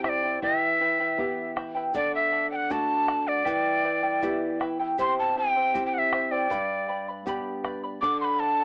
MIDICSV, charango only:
0, 0, Header, 1, 2, 480
1, 0, Start_track
1, 0, Tempo, 760456
1, 264, Time_signature, 2, 2, 24, 8
1, 5455, End_track
2, 0, Start_track
2, 0, Title_t, "Charango"
2, 0, Program_c, 0, 24
2, 22, Note_on_c, 0, 76, 55
2, 26, Note_on_c, 0, 64, 59
2, 30, Note_on_c, 0, 79, 63
2, 31, Note_on_c, 0, 72, 62
2, 139, Note_off_c, 0, 79, 0
2, 143, Note_off_c, 0, 72, 0
2, 143, Note_off_c, 0, 76, 0
2, 145, Note_off_c, 0, 64, 0
2, 146, Note_on_c, 0, 79, 48
2, 150, Note_on_c, 0, 72, 43
2, 156, Note_on_c, 0, 64, 46
2, 261, Note_off_c, 0, 64, 0
2, 265, Note_off_c, 0, 79, 0
2, 266, Note_on_c, 0, 67, 71
2, 267, Note_off_c, 0, 72, 0
2, 267, Note_on_c, 0, 76, 80
2, 269, Note_on_c, 0, 64, 75
2, 272, Note_on_c, 0, 79, 95
2, 273, Note_on_c, 0, 71, 79
2, 498, Note_off_c, 0, 76, 0
2, 501, Note_off_c, 0, 64, 0
2, 505, Note_off_c, 0, 67, 0
2, 505, Note_off_c, 0, 71, 0
2, 505, Note_off_c, 0, 79, 0
2, 506, Note_on_c, 0, 76, 57
2, 508, Note_on_c, 0, 64, 56
2, 512, Note_on_c, 0, 79, 61
2, 513, Note_on_c, 0, 71, 61
2, 621, Note_off_c, 0, 79, 0
2, 625, Note_off_c, 0, 71, 0
2, 625, Note_off_c, 0, 76, 0
2, 627, Note_off_c, 0, 64, 0
2, 629, Note_on_c, 0, 79, 43
2, 632, Note_on_c, 0, 71, 47
2, 637, Note_on_c, 0, 64, 39
2, 744, Note_off_c, 0, 64, 0
2, 747, Note_off_c, 0, 79, 0
2, 748, Note_off_c, 0, 71, 0
2, 748, Note_on_c, 0, 76, 54
2, 751, Note_on_c, 0, 64, 63
2, 755, Note_on_c, 0, 71, 61
2, 758, Note_on_c, 0, 79, 65
2, 978, Note_off_c, 0, 76, 0
2, 979, Note_off_c, 0, 64, 0
2, 984, Note_off_c, 0, 71, 0
2, 985, Note_off_c, 0, 79, 0
2, 985, Note_on_c, 0, 76, 68
2, 987, Note_on_c, 0, 64, 64
2, 992, Note_on_c, 0, 71, 67
2, 992, Note_on_c, 0, 79, 64
2, 1096, Note_off_c, 0, 79, 0
2, 1104, Note_off_c, 0, 71, 0
2, 1104, Note_on_c, 0, 79, 52
2, 1105, Note_off_c, 0, 76, 0
2, 1106, Note_off_c, 0, 64, 0
2, 1112, Note_on_c, 0, 71, 48
2, 1115, Note_on_c, 0, 64, 40
2, 1224, Note_off_c, 0, 79, 0
2, 1228, Note_off_c, 0, 71, 0
2, 1230, Note_off_c, 0, 64, 0
2, 1231, Note_on_c, 0, 69, 68
2, 1232, Note_on_c, 0, 74, 84
2, 1234, Note_on_c, 0, 78, 82
2, 1455, Note_off_c, 0, 69, 0
2, 1457, Note_off_c, 0, 74, 0
2, 1461, Note_off_c, 0, 78, 0
2, 1462, Note_on_c, 0, 69, 58
2, 1465, Note_on_c, 0, 74, 56
2, 1468, Note_on_c, 0, 78, 60
2, 1573, Note_off_c, 0, 78, 0
2, 1581, Note_off_c, 0, 74, 0
2, 1581, Note_on_c, 0, 78, 46
2, 1584, Note_off_c, 0, 69, 0
2, 1589, Note_on_c, 0, 74, 40
2, 1700, Note_off_c, 0, 74, 0
2, 1703, Note_off_c, 0, 78, 0
2, 1703, Note_on_c, 0, 69, 58
2, 1709, Note_on_c, 0, 74, 58
2, 1712, Note_on_c, 0, 78, 75
2, 1930, Note_off_c, 0, 69, 0
2, 1936, Note_off_c, 0, 74, 0
2, 1937, Note_on_c, 0, 69, 55
2, 1941, Note_off_c, 0, 78, 0
2, 1944, Note_on_c, 0, 74, 64
2, 1948, Note_on_c, 0, 78, 69
2, 2053, Note_off_c, 0, 78, 0
2, 2061, Note_off_c, 0, 69, 0
2, 2061, Note_on_c, 0, 78, 48
2, 2064, Note_off_c, 0, 74, 0
2, 2071, Note_on_c, 0, 74, 43
2, 2175, Note_on_c, 0, 67, 78
2, 2175, Note_on_c, 0, 76, 80
2, 2176, Note_off_c, 0, 74, 0
2, 2177, Note_on_c, 0, 64, 73
2, 2178, Note_off_c, 0, 78, 0
2, 2178, Note_on_c, 0, 71, 79
2, 2180, Note_on_c, 0, 79, 88
2, 2415, Note_off_c, 0, 76, 0
2, 2417, Note_off_c, 0, 64, 0
2, 2419, Note_off_c, 0, 71, 0
2, 2420, Note_off_c, 0, 67, 0
2, 2422, Note_off_c, 0, 79, 0
2, 2423, Note_on_c, 0, 76, 56
2, 2425, Note_on_c, 0, 64, 60
2, 2427, Note_on_c, 0, 71, 60
2, 2432, Note_on_c, 0, 79, 65
2, 2533, Note_off_c, 0, 79, 0
2, 2541, Note_off_c, 0, 71, 0
2, 2541, Note_on_c, 0, 79, 54
2, 2543, Note_off_c, 0, 64, 0
2, 2544, Note_off_c, 0, 76, 0
2, 2548, Note_on_c, 0, 71, 46
2, 2550, Note_on_c, 0, 64, 43
2, 2657, Note_off_c, 0, 64, 0
2, 2660, Note_off_c, 0, 79, 0
2, 2660, Note_on_c, 0, 76, 59
2, 2661, Note_off_c, 0, 71, 0
2, 2665, Note_on_c, 0, 64, 73
2, 2668, Note_on_c, 0, 79, 79
2, 2669, Note_on_c, 0, 71, 76
2, 2893, Note_off_c, 0, 76, 0
2, 2895, Note_off_c, 0, 64, 0
2, 2900, Note_on_c, 0, 76, 65
2, 2901, Note_off_c, 0, 71, 0
2, 2901, Note_off_c, 0, 79, 0
2, 2903, Note_on_c, 0, 64, 74
2, 2909, Note_on_c, 0, 71, 75
2, 2909, Note_on_c, 0, 79, 72
2, 3019, Note_off_c, 0, 79, 0
2, 3021, Note_off_c, 0, 71, 0
2, 3022, Note_off_c, 0, 76, 0
2, 3024, Note_off_c, 0, 64, 0
2, 3026, Note_on_c, 0, 79, 55
2, 3029, Note_on_c, 0, 71, 48
2, 3032, Note_on_c, 0, 64, 43
2, 3138, Note_off_c, 0, 64, 0
2, 3144, Note_on_c, 0, 67, 79
2, 3145, Note_off_c, 0, 71, 0
2, 3145, Note_off_c, 0, 79, 0
2, 3145, Note_on_c, 0, 76, 82
2, 3146, Note_on_c, 0, 64, 82
2, 3148, Note_on_c, 0, 72, 80
2, 3153, Note_on_c, 0, 79, 91
2, 3378, Note_off_c, 0, 76, 0
2, 3381, Note_off_c, 0, 64, 0
2, 3384, Note_off_c, 0, 67, 0
2, 3384, Note_off_c, 0, 72, 0
2, 3385, Note_off_c, 0, 79, 0
2, 3385, Note_on_c, 0, 76, 59
2, 3388, Note_on_c, 0, 64, 61
2, 3391, Note_on_c, 0, 72, 62
2, 3393, Note_on_c, 0, 79, 60
2, 3495, Note_off_c, 0, 79, 0
2, 3501, Note_off_c, 0, 72, 0
2, 3502, Note_on_c, 0, 79, 47
2, 3503, Note_off_c, 0, 64, 0
2, 3505, Note_off_c, 0, 76, 0
2, 3508, Note_on_c, 0, 72, 44
2, 3511, Note_on_c, 0, 64, 45
2, 3613, Note_off_c, 0, 64, 0
2, 3618, Note_off_c, 0, 72, 0
2, 3621, Note_on_c, 0, 64, 65
2, 3622, Note_on_c, 0, 76, 58
2, 3623, Note_off_c, 0, 79, 0
2, 3626, Note_on_c, 0, 72, 61
2, 3630, Note_on_c, 0, 79, 66
2, 3856, Note_off_c, 0, 76, 0
2, 3859, Note_off_c, 0, 64, 0
2, 3862, Note_off_c, 0, 72, 0
2, 3863, Note_off_c, 0, 79, 0
2, 3863, Note_on_c, 0, 76, 62
2, 3867, Note_on_c, 0, 64, 63
2, 3870, Note_on_c, 0, 72, 65
2, 3870, Note_on_c, 0, 79, 69
2, 3976, Note_off_c, 0, 79, 0
2, 3979, Note_off_c, 0, 72, 0
2, 3984, Note_off_c, 0, 76, 0
2, 3984, Note_on_c, 0, 79, 51
2, 3985, Note_off_c, 0, 64, 0
2, 3987, Note_on_c, 0, 72, 49
2, 3992, Note_on_c, 0, 64, 40
2, 4094, Note_off_c, 0, 79, 0
2, 4102, Note_on_c, 0, 67, 79
2, 4102, Note_on_c, 0, 79, 72
2, 4103, Note_off_c, 0, 64, 0
2, 4103, Note_off_c, 0, 72, 0
2, 4105, Note_on_c, 0, 71, 82
2, 4106, Note_on_c, 0, 74, 81
2, 4108, Note_on_c, 0, 83, 89
2, 4334, Note_off_c, 0, 79, 0
2, 4336, Note_off_c, 0, 71, 0
2, 4341, Note_off_c, 0, 74, 0
2, 4341, Note_on_c, 0, 79, 56
2, 4343, Note_off_c, 0, 67, 0
2, 4343, Note_off_c, 0, 83, 0
2, 4344, Note_on_c, 0, 71, 55
2, 4348, Note_on_c, 0, 74, 64
2, 4351, Note_on_c, 0, 83, 57
2, 4462, Note_off_c, 0, 83, 0
2, 4463, Note_off_c, 0, 79, 0
2, 4464, Note_off_c, 0, 71, 0
2, 4466, Note_off_c, 0, 74, 0
2, 4470, Note_on_c, 0, 83, 51
2, 4477, Note_on_c, 0, 74, 44
2, 4480, Note_on_c, 0, 71, 41
2, 4586, Note_off_c, 0, 71, 0
2, 4587, Note_off_c, 0, 83, 0
2, 4588, Note_on_c, 0, 79, 66
2, 4589, Note_off_c, 0, 74, 0
2, 4594, Note_on_c, 0, 71, 72
2, 4596, Note_on_c, 0, 74, 71
2, 4599, Note_on_c, 0, 83, 76
2, 4814, Note_off_c, 0, 79, 0
2, 4818, Note_off_c, 0, 71, 0
2, 4822, Note_off_c, 0, 74, 0
2, 4822, Note_on_c, 0, 79, 62
2, 4824, Note_off_c, 0, 83, 0
2, 4825, Note_on_c, 0, 71, 68
2, 4829, Note_on_c, 0, 74, 68
2, 4832, Note_on_c, 0, 83, 66
2, 4937, Note_off_c, 0, 83, 0
2, 4941, Note_off_c, 0, 74, 0
2, 4943, Note_off_c, 0, 79, 0
2, 4945, Note_off_c, 0, 71, 0
2, 4945, Note_on_c, 0, 83, 46
2, 4949, Note_on_c, 0, 74, 45
2, 4952, Note_on_c, 0, 71, 39
2, 5062, Note_off_c, 0, 74, 0
2, 5064, Note_off_c, 0, 83, 0
2, 5066, Note_on_c, 0, 69, 71
2, 5068, Note_off_c, 0, 71, 0
2, 5070, Note_on_c, 0, 74, 79
2, 5073, Note_on_c, 0, 78, 80
2, 5299, Note_off_c, 0, 69, 0
2, 5303, Note_off_c, 0, 74, 0
2, 5306, Note_on_c, 0, 69, 54
2, 5308, Note_off_c, 0, 78, 0
2, 5311, Note_on_c, 0, 74, 56
2, 5315, Note_on_c, 0, 78, 60
2, 5422, Note_off_c, 0, 78, 0
2, 5425, Note_off_c, 0, 69, 0
2, 5427, Note_off_c, 0, 74, 0
2, 5429, Note_on_c, 0, 78, 51
2, 5436, Note_on_c, 0, 74, 41
2, 5455, Note_off_c, 0, 74, 0
2, 5455, Note_off_c, 0, 78, 0
2, 5455, End_track
0, 0, End_of_file